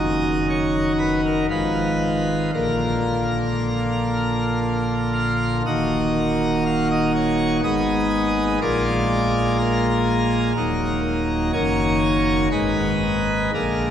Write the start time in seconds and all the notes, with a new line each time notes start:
Already playing: F#1 F#2 D#3 F#3 D#4 D#5
0.50 C#5
0.99 B4
1.25 A#4
1.50 G#1 G#2 D#3 F3 F4 B4
2.54 A#1 A#2 D3 A#3 F4 A#4
5.14 F5
5.66 D#1 D#2 D#3 A#3 F#4 D#5
6.66 F5
6.91 D#5
7.16 C#5
7.64 G#1 G#2 D#3 B3 G#4 D#5
8.61 A#1 A#2 G#3 A#3 F4 D5
9.58 A#4
10.56 D#1 D#2 F#3 A#3 D#4
11.53 F#1 F#2 D#3 A#3 D#4 C#5
12.52 G#1 G#2 D#3 G#3 D#4 B4
13.54 A#1 A#2 D3 G#3 A#3 A#4